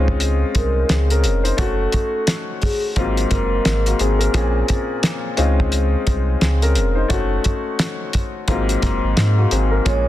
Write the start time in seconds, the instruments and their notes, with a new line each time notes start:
Already playing: sub bass C#2, upright piano G#3 C4 C#4 D#4 F4
0.08 kick
0.20 closed hi-hat
0.55 sub bass C2, vibraphone A#4, kick, closed hi-hat
0.89 sub bass C#2, upright piano C4 G#4, vibraphone G#4, snare, closed hi-hat
1.10 upright piano C#4 A#4, closed hi-hat
1.24 sub bass F1, closed hi-hat
1.44 upright piano D#4 C5, closed hi-hat
1.57 sub bass F#1, upright piano A3 C#4 F#4, vibraphone A4, kick, closed hi-hat
1.92 kick, closed hi-hat
2.27 snare, closed hi-hat
2.62 vibraphone G#4, kick, open hi-hat
2.96 sub bass G#1, upright piano G#2 F#3 A#3 C4 F4, kick, closed hi-hat
3.17 closed hi-hat
3.30 sub bass F#1, vibraphone A#4, kick, closed hi-hat
3.65 sub bass G#1, snare, closed hi-hat
3.86 upright piano A#3 F#4, closed hi-hat
3.99 sub bass G#1, upright piano C4 G#4, closed hi-hat
4.19 upright piano A#4, closed hi-hat
4.34 sub bass A#1, upright piano A#2 A#3 C4 C#4 G#4, kick, closed hi-hat
4.68 kick, closed hi-hat
5.03 snare, closed hi-hat
5.37 sub bass C#2, upright piano G#3 C4 C#4 D#4 F4, closed hi-hat
5.60 kick
5.72 closed hi-hat
6.07 sub bass C2, kick, closed hi-hat
6.41 sub bass C#2, upright piano C4 G#4, snare, closed hi-hat
6.62 upright piano C#4 A#4, closed hi-hat
6.75 sub bass F1, closed hi-hat
6.95 upright piano D#4 C5
7.08 sub bass F#1, upright piano A3 C#4 F#4, kick, closed hi-hat
7.44 kick, closed hi-hat
7.79 snare, closed hi-hat
8.13 kick, closed hi-hat
8.48 sub bass G#1, upright piano G#2 F#3 A#3 C4 F4, kick, closed hi-hat
8.69 closed hi-hat
8.82 sub bass F#1, kick, snare, closed hi-hat
9.04 sub bass G#1
9.17 sub bass G#2, snare, closed hi-hat
9.39 upright piano A#3 F#4
9.51 sub bass G#1, upright piano C4 G#4, closed hi-hat
9.71 upright piano A#4
9.85 sub bass A#1, upright piano A#2 G#3 A#3 C#4 G#4, vibraphone C#5, kick, closed hi-hat